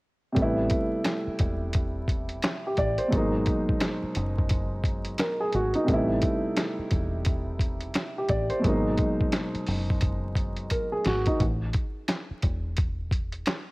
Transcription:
0.32 3.06 C3 medium
0.32 3.08 G3 medium
0.36 0.68 A1 loud
0.36 3.09 A3 medium
0.36 3.10 B3 medium
0.36 kick loud
0.36 closed hi-hat medium
0.42 3.11 E4 medium
0.70 kick medium
0.70 closed hi-hat medium
1.05 snare loud
1.05 snare medium
1.05 closed hi-hat loud
1.27 muted fingered electric bass stroke soft
1.39 2.39 E1 medium
1.39 kick medium
1.39 closed hi-hat medium
1.73 kick loud
1.73 closed hi-hat loud
2.08 kick medium
2.08 closed hi-hat medium
2.29 closed hi-hat medium
2.42 snare loud
2.42 snare medium
2.42 closed hi-hat loud
2.67 2.78 G4 medium
2.77 2.97 A1 medium
2.77 2.98 D5 medium
2.77 kick medium
2.77 closed hi-hat medium
2.98 3.31 C5 medium
2.98 closed hi-hat medium
3.08 5.48 B2 medium
3.08 5.49 F#3 medium
3.12 3.44 G#1 loud
3.12 5.50 G#3 medium
3.12 5.51 A#3 medium
3.12 kick loud
3.12 closed hi-hat medium
3.18 4.84 D#4 medium
3.46 kick medium
3.46 closed hi-hat medium
3.69 kick medium
3.80 snare loud
3.80 snare medium
3.80 closed hi-hat loud
4.03 muted fingered electric bass stroke soft
4.15 5.16 F#1 medium
4.15 closed hi-hat medium
4.38 kick medium
4.49 kick loud
4.49 closed hi-hat loud
4.84 kick medium
4.84 closed hi-hat medium
5.05 closed hi-hat medium
5.18 5.40 A#4 medium
5.18 snare loud
5.18 snare medium
5.18 closed hi-hat loud
5.40 5.53 G#4 medium
5.53 5.73 G#1 medium
5.53 5.75 F#4 medium
5.53 closed hi-hat medium
5.74 6.08 D#4 medium
5.74 closed hi-hat medium
5.84 8.58 C3 medium
5.84 8.59 G3 medium
5.88 6.20 A1 loud
5.88 8.60 A3 medium
5.88 8.62 B3 medium
5.88 kick loud
5.88 closed hi-hat medium
5.94 8.63 E4 medium
6.22 kick medium
6.22 closed hi-hat medium
6.56 snare loud
6.56 snare medium
6.56 closed hi-hat loud
6.79 muted fingered electric bass stroke soft
6.91 7.91 E1 medium
6.91 kick medium
6.91 closed hi-hat medium
7.25 kick loud
7.25 closed hi-hat loud
7.59 kick medium
7.59 closed hi-hat medium
7.81 closed hi-hat medium
7.94 snare loud
7.94 snare medium
7.94 closed hi-hat medium
8.18 8.30 G4 medium
8.29 8.49 A1 medium
8.29 8.50 D5 medium
8.29 kick medium
8.29 closed hi-hat medium
8.50 8.83 C5 medium
8.50 closed hi-hat medium
8.60 10.99 B2 medium
8.60 11.00 F#3 medium
8.64 8.96 G#1 loud
8.64 11.02 G#3 medium
8.64 11.03 A#3 medium
8.64 kick loud
8.64 closed hi-hat medium
8.69 10.36 D#4 medium
8.98 kick medium
8.98 closed hi-hat medium
9.21 kick medium
9.32 snare loud
9.32 snare medium
9.32 closed hi-hat loud
9.55 muted fingered electric bass stroke soft
9.55 closed hi-hat soft
9.66 10.67 F#1 medium
9.66 open hi-hat medium
9.90 kick medium
10.01 kick loud
10.01 closed hi-hat medium
10.35 kick medium
10.35 closed hi-hat medium
10.56 closed hi-hat medium
10.70 10.91 A#4 medium
10.70 kick medium
10.70 closed hi-hat loud
10.92 11.05 G#4 medium
11.05 11.25 G#1 medium
11.05 11.26 F#4 medium
11.05 snare medium
11.05 closed hi-hat medium
11.26 11.40 D#4 medium
11.26 kick medium
11.26 closed hi-hat medium
11.40 11.71 A1 loud
11.40 kick loud
11.40 closed hi-hat medium
11.73 kick medium
11.73 closed hi-hat medium
12.08 snare loud
12.08 snare medium
12.08 closed hi-hat loud
12.31 muted fingered electric bass stroke soft
12.43 13.43 E1 medium
12.43 kick medium
12.43 closed hi-hat medium
12.77 kick loud
12.77 closed hi-hat loud
13.11 kick medium
13.11 closed hi-hat medium
13.32 closed hi-hat medium
13.46 snare loud
13.46 snare medium
13.46 closed hi-hat medium

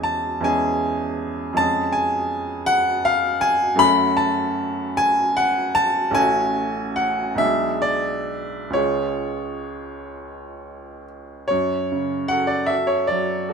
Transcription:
0.00 0.39 E2 medium
0.00 0.41 G#3 soft
0.00 0.41 C#4 soft
0.00 0.42 G#4 soft
0.00 0.44 G#5 medium
0.00 0.44 A5 loud
0.41 1.53 E2 medium
0.41 1.53 G#3 soft
0.41 1.54 C#4 soft
0.41 1.58 G#5 loud
0.45 1.55 G#4 soft
1.53 3.77 F2 medium
1.53 3.77 G#3 soft
1.53 3.78 C#4 soft
1.53 1.95 A5 loud
1.58 3.79 G#4 medium
1.92 2.68 G#5 medium
2.66 3.07 F#5 loud
3.05 3.45 F5 loud
3.41 3.81 G#5 loud
3.75 6.11 F#2 medium
3.75 6.11 A3 medium
3.75 6.13 C#4 medium
3.75 4.20 B5 loud
3.81 6.13 F#4 medium
4.17 4.99 A5 loud
4.97 5.38 G#5 loud
5.37 5.77 F#5 loud
5.75 6.17 A5 loud
6.11 7.34 A1 medium
6.11 7.35 A3 medium
6.11 7.36 C#4 medium
6.11 6.98 G#5 loud
6.16 7.37 F#4 medium
6.96 7.40 F#5 medium
7.35 8.69 B1 medium
7.35 8.70 G#3 soft
7.35 8.70 D4 medium
7.35 7.83 E5 loud
7.40 8.72 G#4 medium
7.82 8.75 D5 medium
8.70 11.43 C#2 medium
8.70 11.44 G#3 soft
8.70 11.44 F4 soft
8.70 11.04 C#5 medium
8.75 11.45 G#4 soft
11.48 13.53 F#2 medium
11.48 12.30 C#5 medium
11.92 12.55 C#3 soft
12.28 12.67 F#4 soft
12.28 12.68 A4 soft
12.28 12.50 F#5 medium
12.47 12.69 D5 medium
12.66 13.05 F#4 soft
12.66 13.06 A4 soft
12.66 12.88 E5 medium
12.87 13.09 C#5 medium
13.07 13.53 F#3 soft
13.07 13.53 D5 medium
13.49 13.53 F#4 soft
13.49 13.53 A4 soft

